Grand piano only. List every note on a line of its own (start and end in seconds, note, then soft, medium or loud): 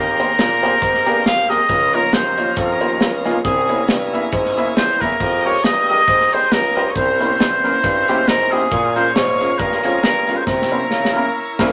0.00 0.59 D#3 medium
0.19 0.29 A#3 medium
0.19 0.29 G4 medium
0.19 0.29 G#4 medium
0.19 0.29 C5 medium
0.63 0.73 A#3 medium
0.63 0.73 G4 medium
0.63 0.73 G#4 medium
0.63 0.73 C5 medium
1.06 1.16 A#3 medium
1.06 1.16 G4 medium
1.06 1.16 G#4 medium
1.06 1.16 A#4 medium
1.50 1.60 A#3 medium
1.50 1.60 G4 medium
1.50 1.60 G#4 medium
1.50 1.60 A#4 medium
1.69 2.34 C#3 medium
1.94 2.04 A#3 medium
1.94 2.04 D#4 medium
1.94 2.04 F4 medium
1.94 2.04 C#5 medium
2.38 2.48 A#3 medium
2.38 2.48 D#4 medium
2.38 2.48 F4 medium
2.38 2.48 C#5 medium
2.80 2.91 A#3 medium
2.80 2.91 D#4 medium
2.80 2.91 F4 medium
2.80 2.91 C5 medium
3.25 3.35 A#3 medium
3.25 3.35 D#4 medium
3.25 3.36 F4 medium
3.25 3.35 G#4 loud
3.45 4.09 C3 medium
3.69 3.79 A#3 medium
3.69 3.79 E4 medium
3.69 3.79 G#4 medium
3.69 3.79 C#5 medium
4.13 4.23 A#3 medium
4.13 4.23 E4 medium
4.13 4.23 G#4 medium
4.13 4.23 E5 medium
4.57 4.67 A#3 medium
4.57 4.67 E4 medium
4.57 4.67 G#4 medium
4.57 4.67 E5 medium
5.02 5.11 A#3 medium
5.02 5.11 E4 medium
5.02 5.11 G#4 medium
5.02 5.12 E5 medium
5.45 5.55 G#3 medium
5.45 5.55 D#4 medium
5.45 5.55 G4 medium
5.45 5.55 A#4 medium
5.90 5.99 G#3 medium
5.90 6.00 D#4 medium
5.90 5.99 G4 medium
5.90 6.00 A#4 medium
6.34 6.43 G#3 medium
6.34 6.43 D#4 medium
6.34 6.44 G4 medium
6.34 6.43 C5 medium
6.76 6.86 G#3 medium
6.76 6.87 D#4 medium
6.76 6.87 G4 medium
6.76 6.87 C5 medium
6.96 7.60 C3 medium
7.20 7.30 A#3 medium
7.20 7.30 C#4 medium
7.20 7.30 E4 medium
7.20 7.31 C5 medium
7.64 7.74 A#3 medium
7.64 7.74 C#4 medium
7.64 7.74 E4 medium
7.64 7.74 A#4 medium
8.09 8.18 A#3 medium
8.09 8.19 C#4 medium
8.09 8.18 E4 medium
8.09 8.18 G4 medium
8.52 8.62 A#3 medium
8.52 8.62 C#4 medium
8.52 8.62 E4 medium
8.52 8.62 G4 medium
8.71 9.36 A#2 medium
8.96 9.06 G#3 medium
8.96 9.06 C#4 medium
8.96 9.06 F4 medium
8.96 9.06 A#4 medium
9.41 9.50 G#3 medium
9.41 9.50 C#4 medium
9.41 9.51 F4 medium
9.41 9.50 A#4 medium
9.85 9.94 G#3 medium
9.85 9.94 C#4 medium
9.85 9.94 F4 medium
9.85 9.94 C#5 medium
10.28 10.38 G#3 medium
10.28 10.38 C#4 medium
10.28 10.38 F4 medium
10.28 10.38 A#4 medium
10.48 11.12 C3 medium
10.72 10.81 A#3 medium
10.72 10.81 C#4 medium
10.72 10.81 E4 medium
10.72 10.82 C5 medium
11.16 11.25 A#3 medium
11.16 11.26 C#4 medium
11.16 11.26 E4 medium
11.16 11.26 A#4 medium
11.59 11.72 A#3 loud
11.59 11.72 C#4 medium
11.59 11.72 E4 medium
11.59 11.72 A#4 medium